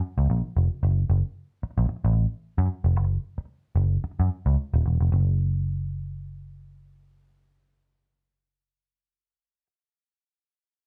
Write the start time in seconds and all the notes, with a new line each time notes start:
0.18 C#2
0.30 A#1
0.57 F1
0.83 F#1
1.10 F#1
1.63 muted picked electric bass stroke
1.78 A#1
1.89 muted picked electric bass stroke
2.05 A1
2.58 F#2
2.84 F1
2.96 F#1
3.38 muted picked electric bass stroke
3.76 F#1
4.04 muted picked electric bass stroke
4.20 F#2
4.46 C#2
4.74 D#1
4.86 E1
5.01 F1
5.12 F#1